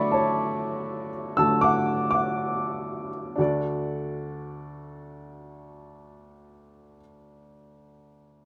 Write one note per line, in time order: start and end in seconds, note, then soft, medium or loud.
0.00 1.34 D3 soft
0.00 1.34 F#3 soft
0.00 1.35 A3 medium
0.00 0.12 D5 medium
0.00 3.40 E5 medium
0.00 1.64 F#5 medium
0.00 0.13 B5 medium
0.00 3.41 C#6 medium
0.00 1.61 D6 medium
0.12 1.10 C#5 medium
0.12 1.08 A5 medium
1.37 3.34 D3 soft
1.37 3.34 F#3 soft
1.37 3.35 A3 soft
1.37 1.62 A5 medium
1.37 1.63 E6 medium
1.61 2.10 F#5 medium
1.61 2.09 D6 medium
2.11 3.10 F#5 medium
2.11 3.08 D6 medium
3.36 7.00 D2 medium
3.36 6.97 D4 medium
3.36 6.99 F#4 medium
3.36 7.01 A4 medium
3.41 7.02 D5 medium